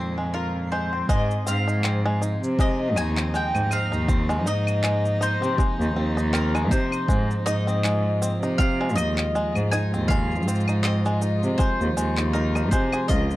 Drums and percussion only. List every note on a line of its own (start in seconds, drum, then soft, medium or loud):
1.09 kick loud
1.09 shaker soft
1.31 shaker soft
1.47 shaker medium
1.69 shaker soft
1.84 clap medium
1.84 shaker soft
2.22 shaker medium
2.44 shaker soft
2.59 kick loud
2.59 shaker soft
2.96 claves medium
2.96 shaker medium
3.17 clap medium
3.17 shaker soft
3.35 shaker soft
3.55 claves medium
3.55 shaker soft
3.71 claves medium
3.71 shaker medium
3.93 shaker soft
4.08 kick loud
4.08 shaker soft
4.30 shaker soft
4.47 shaker medium
4.67 claves medium
4.67 shaker soft
4.84 clap medium
4.84 shaker soft
5.05 shaker soft
5.22 shaker medium
5.43 shaker soft
5.58 kick loud
5.58 shaker soft
5.81 shaker soft
6.18 shaker soft
6.34 clap medium
6.34 shaker soft
6.55 claves medium
6.55 shaker soft
6.71 kick loud
6.71 shaker medium
6.92 claves medium
6.92 shaker soft
7.08 kick loud
7.08 shaker soft
7.31 shaker soft
7.47 shaker medium
7.68 shaker soft
7.84 clap medium
7.84 shaker soft
8.22 shaker medium
8.43 shaker soft
8.59 kick loud
8.59 shaker soft
8.89 shaker soft
8.97 claves medium
8.97 shaker medium
9.18 clap medium
9.18 shaker soft
9.36 shaker soft
9.55 claves medium
9.55 shaker soft
9.72 claves medium
9.72 shaker medium
9.94 shaker soft
10.09 kick loud
10.09 shaker soft
10.31 shaker soft
10.35 shaker soft
10.42 shaker soft
10.48 shaker medium
10.55 shaker soft
10.60 shaker soft
10.68 claves medium
10.68 shaker soft
10.84 clap medium
10.84 shaker soft
11.05 shaker soft
11.22 shaker medium
11.43 shaker soft
11.59 kick loud
11.59 shaker soft
11.81 shaker soft
11.97 shaker medium
12.17 clap medium
12.17 shaker soft
12.35 shaker soft
12.55 claves medium
12.55 shaker soft
12.72 kick loud
12.72 shaker medium
12.92 claves medium
12.92 shaker soft
13.09 kick loud
13.09 open hi-hat soft
13.09 shaker soft
13.31 shaker soft